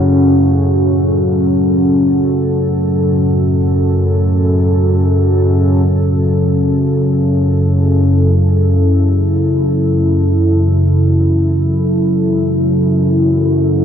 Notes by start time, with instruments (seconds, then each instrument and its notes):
Already playing: synth drone F#2 C#3, ambient pad A2 C#4 F#4 A4
5.87 synth drone F#2 C#3, ambient pad E4